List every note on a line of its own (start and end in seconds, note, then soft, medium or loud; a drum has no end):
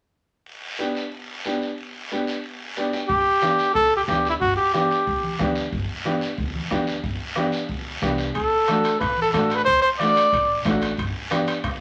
0.46 long guiro medium
0.79 1.02 B3 medium
0.79 1.03 D4 medium
0.79 1.03 G4 medium
0.79 short guiro medium
0.95 short guiro medium
1.12 long guiro medium
1.45 1.68 B3 medium
1.45 1.68 D4 medium
1.45 1.69 G4 medium
1.45 short guiro medium
1.62 short guiro medium
1.78 long guiro medium
2.11 2.34 B3 medium
2.11 2.35 D4 medium
2.11 2.35 G4 medium
2.11 short guiro medium
2.27 short guiro medium
2.44 long guiro medium
2.77 3.00 B3 medium
2.77 3.00 D4 medium
2.77 3.00 G4 medium
2.77 2.93 D5 medium
2.77 short guiro medium
2.93 3.09 G5 medium
2.93 short guiro medium
3.08 3.23 G1 medium
3.08 3.71 G4 medium
3.08 bombo low medium
3.08 long guiro medium
3.42 3.65 B3 medium
3.42 3.65 D4 medium
3.42 3.65 G4 medium
3.42 bombo rim medium
3.42 high conga medium
3.42 short guiro medium
3.59 short guiro medium
3.74 4.02 D2 medium
3.74 3.95 A4 medium
3.74 bombo low medium
3.74 long guiro medium
3.97 4.02 G4 medium
4.07 4.34 D2 medium
4.07 4.32 B3 medium
4.07 4.31 D4 medium
4.07 4.28 G4 medium
4.07 4.32 G4 medium
4.07 bombo rim medium
4.07 high conga medium
4.07 short guiro medium
4.25 short guiro medium
4.29 4.35 E4 medium
4.40 4.54 G1 medium
4.40 4.56 F#4 medium
4.40 bombo low medium
4.40 long guiro medium
4.56 4.72 G4 medium
4.74 4.97 B3 medium
4.74 4.97 D4 medium
4.74 5.36 G4 medium
4.74 4.97 G4 medium
4.74 bombo rim medium
4.74 high conga medium
4.74 short guiro medium
4.91 short guiro medium
5.07 5.33 D2 medium
5.07 bombo low medium
5.07 long guiro medium
5.23 high conga medium
5.39 5.66 D2 loud
5.39 5.63 B3 medium
5.39 5.63 D4 medium
5.39 5.63 G4 medium
5.39 bombo rim medium
5.39 high conga medium
5.39 short guiro medium
5.55 short guiro medium
5.72 5.86 G1 medium
5.72 bombo low medium
5.72 long guiro medium
6.05 6.28 B3 medium
6.05 6.28 D4 medium
6.05 6.28 G4 medium
6.05 bombo rim medium
6.05 high conga medium
6.05 short guiro medium
6.21 short guiro medium
6.38 6.64 D2 medium
6.38 bombo low medium
6.38 long guiro medium
6.55 high conga medium
6.70 6.97 D2 medium
6.70 6.94 B3 medium
6.70 6.94 D4 medium
6.70 6.94 G4 medium
6.70 bombo rim medium
6.70 high conga medium
6.70 short guiro medium
6.87 short guiro medium
7.04 7.17 G1 medium
7.04 bombo low medium
7.04 long guiro medium
7.36 7.59 B3 medium
7.36 7.60 D4 medium
7.36 7.60 G4 medium
7.36 bombo rim medium
7.36 high conga medium
7.36 short guiro medium
7.52 short guiro medium
7.69 7.96 D2 medium
7.69 bombo low medium
7.69 long guiro medium
8.02 8.28 C2 medium
8.02 8.25 B3 medium
8.02 8.26 D4 medium
8.02 8.26 G4 medium
8.02 bombo rim medium
8.02 high conga medium
8.02 short guiro medium
8.18 short guiro medium
8.35 8.49 D2 medium
8.35 8.97 A4 medium
8.35 bombo low medium
8.35 high timbale medium
8.35 long guiro medium
8.68 8.91 A3 medium
8.68 8.92 D4 medium
8.68 8.92 F#4 medium
8.68 bombo rim medium
8.68 high conga medium
8.68 high timbale medium
8.68 short guiro medium
8.84 high timbale medium
8.84 short guiro medium
8.99 9.27 A1 medium
8.99 9.20 B4 medium
8.99 bombo low medium
8.99 bombo rim medium
8.99 high timbale medium
8.99 long guiro medium
9.17 high conga medium
9.22 9.27 A4 medium
9.32 9.60 A1 medium
9.32 9.57 A3 medium
9.32 9.57 D4 medium
9.32 9.58 F#4 medium
9.32 9.56 A4 medium
9.32 bombo rim medium
9.32 high conga medium
9.32 high timbale medium
9.32 short guiro medium
9.50 high timbale medium
9.50 short guiro medium
9.55 9.64 B4 medium
9.65 9.80 D2 medium
9.65 9.81 C5 medium
9.65 bombo low medium
9.65 high timbale medium
9.65 long guiro medium
9.82 9.89 C5 medium
9.99 10.23 A3 medium
9.99 10.23 D4 medium
9.99 10.24 F#4 medium
9.99 10.61 D5 medium
9.99 bombo rim medium
9.99 high conga medium
9.99 high timbale medium
9.99 short guiro medium
10.16 high timbale medium
10.16 short guiro medium
10.32 10.59 A1 medium
10.32 bombo low medium
10.32 high timbale medium
10.32 long guiro medium
10.65 10.92 A1 medium
10.65 10.89 A3 medium
10.65 10.89 D4 medium
10.65 10.89 F#4 medium
10.65 bombo low medium
10.65 bombo rim medium
10.65 high conga medium
10.65 high timbale medium
10.65 low timbale medium
10.65 short guiro medium
10.81 high timbale medium
10.81 short guiro medium
10.98 11.11 G1 medium
10.98 bombo low medium
10.98 high timbale medium
10.98 long guiro medium
11.30 11.54 B3 medium
11.30 11.54 D4 medium
11.30 11.54 G4 medium
11.30 bombo rim medium
11.30 high conga medium
11.30 high timbale medium
11.30 short guiro medium
11.47 high timbale medium
11.47 short guiro medium
11.64 11.80 D2 medium
11.64 bombo low medium
11.64 bombo rim medium
11.64 high timbale medium
11.64 long guiro medium